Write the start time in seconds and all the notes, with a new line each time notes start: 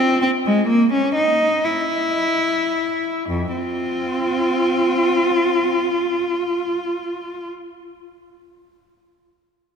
Already playing: C4
0.22 C4
0.46 G#3
0.67 A#3
0.93 C#4
1.15 D#4
1.65 E4
3.29 F2
3.55 C4 F4